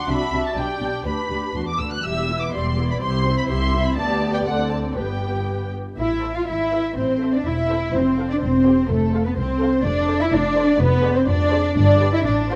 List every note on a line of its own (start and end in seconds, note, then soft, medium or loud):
0.08 0.16 C2 medium
0.08 0.16 C3 medium
0.08 0.30 D4 medium
0.08 0.30 F#4 medium
0.08 0.57 E5 medium
0.08 0.45 B5 medium
0.31 0.40 C2 medium
0.31 0.40 C3 medium
0.31 0.54 D4 soft
0.31 0.55 F#4 soft
0.45 0.57 A5 medium
0.54 0.64 B1 medium
0.54 0.64 B2 soft
0.54 0.78 D4 soft
0.54 0.78 G4 soft
0.54 1.05 D5 medium
0.54 1.06 G5 medium
0.79 0.88 B1 soft
0.79 0.89 B2 soft
0.79 1.03 D4 soft
0.79 1.03 G4 soft
1.04 1.12 D2 soft
1.04 1.13 D2 soft
1.04 1.28 D4 soft
1.04 1.28 G4 soft
1.04 1.80 B4 soft
1.04 1.55 B5 medium
1.29 1.37 D2 soft
1.29 1.38 D2 soft
1.29 1.53 D4 soft
1.29 1.54 G4 soft
1.53 1.61 D2 soft
1.53 1.79 E2 soft
1.53 1.78 D4 soft
1.53 1.79 F#4 soft
1.53 1.68 C6 medium
1.68 1.80 D6 medium
1.79 1.87 D2 soft
1.79 2.05 D2 soft
1.79 2.04 D4 soft
1.79 2.05 F#4 soft
1.79 1.92 E6 medium
1.92 2.05 F#6 medium
2.04 2.48 E1 medium
2.04 2.49 E2 medium
2.04 2.28 G3 soft
2.04 2.28 G4 soft
2.04 2.51 E5 medium
2.04 2.42 E6 medium
2.30 2.55 B3 soft
2.30 2.54 E4 soft
2.41 2.54 D6 medium
2.52 2.97 E1 medium
2.52 2.97 E2 soft
2.52 2.78 G3 soft
2.52 2.79 G4 soft
2.52 3.03 D5 medium
2.52 2.89 C6 medium
2.79 3.03 B3 soft
2.79 3.01 E4 soft
2.91 2.96 B5 medium
3.02 3.44 C2 medium
3.02 3.45 C2 medium
3.02 3.25 E4 medium
3.02 3.25 G4 medium
3.02 3.50 C5 medium
3.02 3.38 C6 medium
3.27 3.51 C4 soft
3.27 3.50 E4 soft
3.38 3.43 B5 medium
3.48 3.92 C2 medium
3.48 3.93 C2 medium
3.48 3.74 E4 medium
3.48 3.75 G4 medium
3.48 3.98 E5 medium
3.48 3.84 C6 medium
3.75 3.99 C4 medium
3.75 3.99 E4 medium
3.84 3.97 B5 medium
3.95 4.43 D2 medium
3.95 4.43 B3 medium
3.95 4.43 G4 medium
3.95 4.95 D5 medium
3.95 4.32 A5 medium
4.33 4.38 G5 medium
4.45 4.95 D2 medium
4.45 4.96 D2 medium
4.45 4.97 C4 medium
4.45 4.97 A4 soft
4.45 4.70 F#5 medium
4.70 4.78 A5 medium
4.95 5.78 G1 soft
4.95 5.78 G2 soft
4.95 5.78 B3 soft
4.95 5.78 G4 soft
4.95 5.72 B4 soft
4.95 5.71 G5 medium
5.98 6.38 A1 medium
5.98 6.33 E4 medium
5.98 6.33 E5 medium
6.22 6.42 C5 medium
6.22 6.42 E5 medium
6.22 6.41 A5 medium
6.34 6.48 F4 medium
6.34 6.47 F5 medium
6.46 6.87 G#1 medium
6.46 6.97 E4 medium
6.46 6.96 E5 medium
6.72 6.91 B4 medium
6.72 6.91 E5 medium
6.96 7.36 A1 medium
6.96 7.33 C4 medium
6.96 7.33 C5 medium
7.21 7.40 A4 medium
7.21 7.40 C5 medium
7.21 7.40 E5 medium
7.33 7.47 D4 medium
7.33 7.46 D5 medium
7.45 7.84 E1 medium
7.45 7.95 E4 medium
7.45 7.93 E5 medium
7.69 7.88 A4 medium
7.69 7.88 C5 medium
7.69 7.89 E5 medium
7.94 8.32 F1 medium
7.94 8.31 C4 medium
7.94 8.30 C5 medium
8.18 8.36 A4 medium
8.18 8.36 C5 medium
8.18 8.37 F5 medium
8.30 8.43 D4 medium
8.30 8.42 D5 medium
8.39 8.80 E1 medium
8.39 8.87 C5 medium
8.43 8.89 C4 medium
8.66 8.84 G4 medium
8.66 8.84 C5 medium
8.66 8.84 G5 medium
8.89 9.27 F1 medium
8.89 9.25 A3 medium
8.89 9.25 A4 medium
9.13 9.31 A4 medium
9.13 9.31 C5 medium
9.13 9.32 F5 medium
9.25 9.31 B3 medium
9.25 9.37 B4 medium
9.37 9.74 C2 medium
9.37 9.84 C4 medium
9.37 9.83 C5 medium
9.61 9.79 A4 medium
9.61 9.78 C5 medium
9.61 9.79 F5 medium
9.84 10.22 F1 medium
9.84 10.19 D4 loud
9.84 10.20 D5 medium
10.09 10.26 A4 medium
10.09 10.26 C5 medium
10.09 10.26 D5 medium
10.20 10.32 E4 medium
10.20 10.25 E5 medium
10.31 10.70 F1 medium
10.31 10.80 D4 medium
10.31 10.79 D5 medium
10.56 10.74 A4 medium
10.56 10.74 C5 medium
10.56 10.74 D5 medium
10.79 11.18 F1 medium
10.79 11.16 B3 loud
10.79 11.16 B4 loud
11.04 11.22 G#4 medium
11.04 11.22 C5 medium
11.04 11.22 D5 medium
11.16 11.29 C4 medium
11.16 11.28 C5 medium
11.28 11.66 F1 medium
11.28 11.75 D4 medium
11.28 11.76 D5 medium
11.53 11.70 G#4 medium
11.53 11.70 C5 medium
11.53 11.71 D5 medium
11.76 12.15 G1 medium
11.76 12.12 D4 loud
11.76 12.12 D5 medium
12.01 12.19 G4 medium
12.01 12.19 B4 medium
12.01 12.19 D5 medium
12.14 12.26 E4 medium
12.14 12.26 E5 medium
12.25 12.56 A1 medium
12.25 12.51 D4 medium
12.25 12.34 D5 medium
12.51 12.56 C4 medium
12.51 12.56 F4 medium
12.51 12.56 C5 medium
12.51 12.56 F5 medium